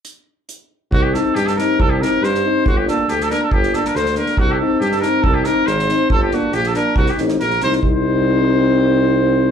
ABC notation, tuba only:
X:1
M:2/4
L:1/8
Q:1/4=139
K:none
V:1 name="Tuba" clef=bass
z4 | C,,2 G,,2 | C,,2 G,,2 | G,,,2 D,,2 |
G,,,2 D,,2 | C,,2 G,,2 | C,,2 _A,,,2 | G,,,2 _B,,,2 |
C,, A,,, _B,,, C,, | C,,4- | C,,4 |]